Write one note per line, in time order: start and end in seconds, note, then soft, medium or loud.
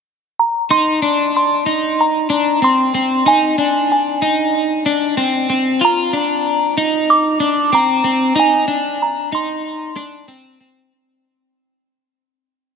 0.40 0.72 A#5 medium
0.70 1.02 D#4 medium
0.70 1.35 C6 medium
1.02 1.66 D4 medium
1.37 2.01 C6 medium
1.66 2.29 D#4 medium
2.01 2.59 A#5 medium
2.30 2.62 D4 medium
2.62 2.93 C4 medium
2.62 3.29 C6 medium
2.94 3.26 C4 medium
3.26 3.58 D#4 medium
3.26 3.91 G#5 medium
3.58 4.22 D4 medium
3.92 4.50 G#5 medium
4.22 4.85 D#4 medium
4.86 5.17 D4 medium
5.17 5.48 C4 medium
5.50 5.81 C4 medium
5.81 6.13 F4 medium
5.81 7.14 A#5 medium
6.13 6.77 D4 medium
6.78 7.40 D#4 medium
7.10 7.75 D6 medium
7.40 7.72 D4 medium
7.73 8.03 C4 medium
7.73 8.39 A#5 medium
8.04 8.35 C4 medium
8.36 8.67 D#4 medium
8.36 9.04 G#5 medium
8.68 9.32 D4 medium
9.02 9.34 A#5 medium
9.32 9.96 D#4 medium
9.32 10.57 C6 medium
9.96 10.28 D4 medium
10.28 10.59 C4 medium
10.61 10.92 C4 medium